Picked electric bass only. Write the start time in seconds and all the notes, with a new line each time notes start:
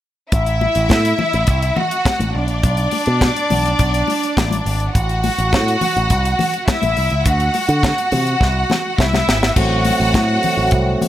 0.33 A1
0.76 A1
0.90 A2
1.34 A1
1.48 C2
2.20 A1
2.35 B1
2.49 A#1
2.64 B1
3.07 B2
3.51 B1
3.79 B1
4.38 A1
4.66 G#1
4.95 A1
5.38 A1
5.53 A2
5.96 A1
6.11 C2
6.83 A1
6.97 C2
7.11 C#2
7.26 D2
7.69 D3
8.12 C3
8.41 C2
8.99 C2
9.28 G#1
9.56 A1
10.00 A1
10.14 A2
10.57 A1
10.72 C2